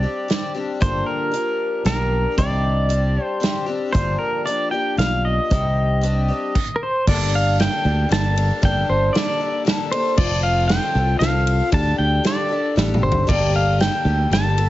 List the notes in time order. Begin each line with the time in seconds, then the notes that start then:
Already playing: D5
0.03 G3 C4 D4 G4
0.28 G3 C4 D4 G4, snare, closed hi-hat
0.54 G3 C4 D4 G4
0.80 G1 G2 D3 F3 A#3 D4 G4 C5, kick, closed hi-hat
1.06 A#4
1.31 F3 A#3 D4 G4, closed hi-hat
1.85 B1 F3 A#3 D4 G4 A#4, snare, closed hi-hat
2.37 C2 C3 D#3 G3 C4 D4 G4 D5, kick, closed hi-hat
2.89 G3 C4 D4 G4, closed hi-hat
3.24 C5
3.40 G3 C4 D4 G4, snare, closed hi-hat
3.66 G3 C4 D4 G4
3.92 G1 G2 D3 F3 A#3 D4 G4 C5, kick, closed hi-hat
4.19 A#4
4.45 F3 A#3 D4 G4 D5, closed hi-hat
4.71 F3 A#3 D4 G4 G5
4.97 B1 F3 A#3 D4 F5, snare, closed hi-hat
5.01 G4
5.25 D#5
5.50 C2 C3 D#3 G3 C4 G4, kick, closed hi-hat
6.01 G3 C4 D4 G4, closed hi-hat
6.28 G3 C4 D4 G4
6.55 kick, crash
6.76 A#4
6.83 C5
7.07 G1 G2 D3 G3 A#3 D4 A4 D5, kick, crash
7.35 F5
7.58 G3 A#3 D4 A4 G5, snare, ride
7.84 D2 G3 A#3 D4 A4
8.09 G1 G3 A#3 D4 A4 A5, snare, ride
8.36 G3 A#3 D4 A4, ride
8.62 G1 G2 D3 G3 A#3 D4 A4 G5, kick, ride
8.89 G1 C5
9.13 G3 A#3 D4 D5, snare, ride
9.17 A4
9.39 G3 A#3 D4 A4
9.65 G3 A#3 D4 A4, snare, ride
9.91 G3 A#3 D4 A4 C5, ride
10.18 F1 F3 C4 F4 A4 D5, kick, crash
10.43 F5
10.68 F3 C4 F4 G5, snare, ride
10.72 A4
10.95 C2 C4 F4 A4
11.19 C2 F3 C4 F4 A4 F5, snare, ride
11.47 ride
11.72 D2 D3 G3 D4 G4 A4 A5, kick, ride
11.98 D2 G5
12.24 G3 D4 G4 A4 D5, snare, ride
12.48 D4 G4 A4
12.76 A1 G3 D4 G4 A4, snare
12.94 mid tom
13.02 G1 C5
13.12 floor tom
13.27 G1 G2 D3 G3 A#3 G4 A4 D5, kick, crash
13.56 F5
13.78 G3 A#3 G4 A4 G5, snare, ride
14.04 D2 G3 A#3 G4 A4
14.30 G1 G3 A#3 G4 A5, snare, ride
14.34 A4
14.57 G3 A#3 G4 A4, ride